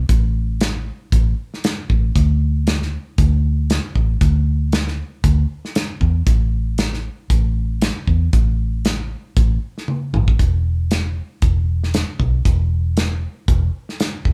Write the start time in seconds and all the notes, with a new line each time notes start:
0.09 A1, kick, closed hi-hat
0.61 snare, closed hi-hat
1.12 A1, kick, closed hi-hat
1.54 snare
1.64 snare, closed hi-hat
1.90 A1, kick
2.16 D2, kick, closed hi-hat
2.67 snare, closed hi-hat
2.82 snare
3.18 D2, kick, closed hi-hat
3.70 snare, closed hi-hat
3.95 A1, kick
4.21 D2, kick, closed hi-hat
4.72 snare, closed hi-hat
4.88 snare
5.24 D2, kick, closed hi-hat
5.65 snare
5.75 snare, closed hi-hat
6.01 E2, kick
6.27 A1, kick, closed hi-hat
6.78 snare, closed hi-hat
6.94 snare
7.30 A1, kick, closed hi-hat
7.82 snare, closed hi-hat
8.07 E2, kick
8.33 A1, kick, closed hi-hat
8.85 snare, closed hi-hat
9.37 A1, kick, closed hi-hat
9.78 snare
9.88 high tom
10.13 A1, mid tom
10.28 kick
10.39 E1, kick, closed hi-hat
10.91 snare, closed hi-hat
11.42 E1, kick, closed hi-hat
11.83 snare
11.94 snare, closed hi-hat
12.20 B1, kick
12.45 E1, kick, closed hi-hat
12.97 snare, closed hi-hat
13.48 E1, kick, closed hi-hat
13.89 snare
14.00 snare, closed hi-hat
14.25 E1, kick